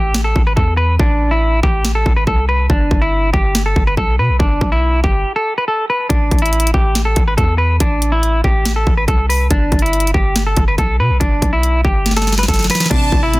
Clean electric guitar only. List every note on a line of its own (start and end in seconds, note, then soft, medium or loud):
0.00 0.23 G4 medium
0.24 0.42 A4 medium
0.47 0.55 B4 medium
0.56 0.74 A4 medium
0.77 0.95 B4 medium
1.00 1.30 D4 medium
1.31 1.61 E4 medium
1.63 1.93 G4 medium
1.95 2.12 A4 medium
2.16 2.25 B4 medium
2.27 2.44 A4 medium
2.49 2.66 B4 medium
2.70 3.00 D4 medium
3.02 3.32 E4 medium
3.33 3.63 G4 medium
3.66 3.83 A4 medium
3.87 3.96 B4 medium
3.98 4.15 A4 medium
4.19 4.36 B4 medium
4.39 4.70 D4 medium
4.72 5.02 E4 medium
5.04 5.34 G4 medium
5.36 5.53 A4 medium
5.58 5.66 B4 medium
5.68 5.85 A4 medium
5.90 6.06 B4 medium
6.09 6.40 D4 medium
6.42 6.72 E4 medium
6.74 7.04 G4 medium
7.05 7.22 A4 medium
7.28 7.36 B4 medium
7.37 7.54 A4 medium
7.58 7.75 B4 medium
7.81 8.11 D4 medium
8.12 8.42 E4 medium
8.44 8.74 G4 medium
8.76 8.93 A4 medium
8.97 9.06 B4 medium
9.08 9.25 A4 medium
9.29 9.46 B4 medium
9.51 9.81 D4 loud
9.82 10.12 E4 medium
10.14 10.44 G4 medium
10.47 10.63 A4 medium
10.68 10.76 B4 medium
10.79 10.96 A4 medium
11.00 11.17 B4 medium
11.20 11.50 D4 medium
11.53 11.83 E4 medium
11.85 12.15 G4 medium
12.17 12.34 A4 medium
12.39 12.47 B4 medium
12.49 12.66 A4 medium
12.71 12.87 B4 medium
12.90 13.21 D4 medium
13.23 13.40 E4 medium